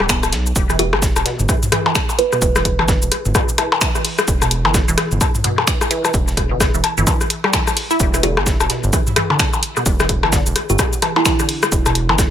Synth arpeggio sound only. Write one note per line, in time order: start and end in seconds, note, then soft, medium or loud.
0.09 0.16 B3 medium
0.70 0.74 E3 loud
0.79 0.85 E3 medium
1.26 1.35 B2 medium
1.49 1.55 E3 medium
1.72 1.78 E3 loud
1.86 1.90 E3 medium
2.32 2.39 B2 medium
2.56 2.60 E3 medium
2.79 2.83 E3 loud
2.88 2.95 E3 medium
3.35 3.44 B2 medium
3.58 3.64 E3 medium
3.81 3.88 E3 loud
3.95 3.99 E3 medium
4.42 4.48 B2 medium
4.65 4.69 E3 medium
4.88 4.92 E3 loud
4.98 5.04 E3 medium
5.44 5.53 B2 medium
5.67 5.74 E3 medium
5.91 5.97 E3 loud
6.05 6.09 E3 medium
6.51 6.57 B2 medium
6.74 6.79 E3 medium
6.98 7.02 E3 loud
7.07 7.13 E3 medium
7.44 7.48 G3 loud
7.54 7.60 E3 medium
7.91 7.95 E4 loud
8.14 8.18 E3 loud
8.23 8.27 D3 loud
8.70 8.79 B2 medium
8.93 8.99 E3 medium
9.16 9.22 E3 loud
9.30 9.33 D3 loud
9.77 9.83 B2 medium
10.00 10.04 E3 medium
10.23 10.27 E3 loud
10.33 10.36 D3 loud
10.79 10.88 B2 medium
11.02 11.09 E3 medium
11.26 11.32 E3 loud
11.39 11.42 D3 loud
11.86 11.92 B2 medium
12.09 12.13 E3 medium